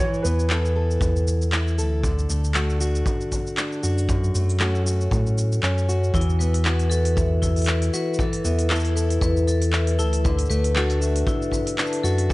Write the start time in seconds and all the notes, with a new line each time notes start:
Already playing: B3 E4 C#5
0.00 E3
0.14 cabasa
0.22 E2 B3 B4, cabasa
0.40 cabasa
0.50 B3 E4 A4, clap, cabasa
0.65 cabasa
0.76 A4
0.91 cabasa
1.01 E2, kick, cabasa
1.16 cabasa
1.28 cabasa
1.42 cabasa
1.52 E4, clap, cabasa
1.68 cabasa
1.78 D2 A4, cabasa
2.03 D3, kick, cabasa
2.19 cabasa
2.30 D2 A3, cabasa
2.44 cabasa
2.54 A3 D4 F#4, clap, cabasa
2.70 cabasa
2.81 F#4, cabasa
2.95 cabasa
3.06 kick, cabasa
3.21 cabasa
3.32 kick, cabasa
3.47 cabasa
3.57 D4, clap, cabasa
3.72 cabasa
3.83 F#2 F#4, cabasa
3.98 cabasa
4.09 F#2, kick, cabasa
4.24 cabasa
4.35 F#2 A3, cabasa
4.50 cabasa
4.60 A3 C#4 F#4, clap, cabasa
4.75 cabasa
4.86 F#4, cabasa
5.01 cabasa
5.11 A2, kick, cabasa
5.27 cabasa
5.38 cabasa
5.52 cabasa
5.63 F#2 C#4, clap, cabasa
5.78 cabasa
5.89 F#4, cabasa
6.04 cabasa
6.14 E2 E3 E4, kick, cabasa
6.21 open hi-hat
6.30 cabasa
6.39 B3 B4, cabasa
6.54 open hi-hat, cabasa
6.64 B3 E4 F#4 B4, clap, cabasa
6.79 open hi-hat, cabasa
6.90 F#4 A4, cabasa
7.05 open hi-hat, cabasa
7.16 E5, kick, cabasa
7.42 E4, kick, cabasa
7.56 open hi-hat, cabasa
7.59 open hi-hat
7.62 open hi-hat
7.64 E4 B4, clap, open hi-hat, cabasa
7.82 open hi-hat, cabasa
7.93 F#4 B4, cabasa
8.14 cabasa
8.19 E3 A4, kick, cabasa
8.33 open hi-hat, cabasa
8.45 E2 B3 E5, cabasa
8.59 open hi-hat, cabasa
8.70 B3 E4 A4, clap, cabasa
8.76 cabasa
8.80 cabasa
8.85 open hi-hat, cabasa
8.96 A4 B4, cabasa
9.10 open hi-hat, cabasa
9.21 E2 B4, kick, cabasa
9.37 cabasa
9.48 A4, cabasa
9.62 open hi-hat, cabasa
9.73 E4 E5, clap, cabasa
9.87 open hi-hat, cabasa
9.99 D2 E4 A4, cabasa
10.13 open hi-hat, cabasa
10.24 D3 B4, kick, cabasa
10.39 open hi-hat
10.46 cabasa
10.50 D2 A3 B4, cabasa
10.64 open hi-hat, cabasa
10.75 A3 D4 F#4 A4, clap, cabasa
10.90 open hi-hat, cabasa
11.01 F#4 E5, cabasa
11.16 open hi-hat, cabasa
11.27 E4, kick, cabasa
11.42 cabasa
11.52 B4, kick, cabasa
11.67 open hi-hat, cabasa
11.78 D4 B4, clap, cabasa
11.87 cabasa
11.93 open hi-hat
12.03 F#2 F#4 A4, cabasa
12.18 open hi-hat, cabasa
12.29 F#2 E5, kick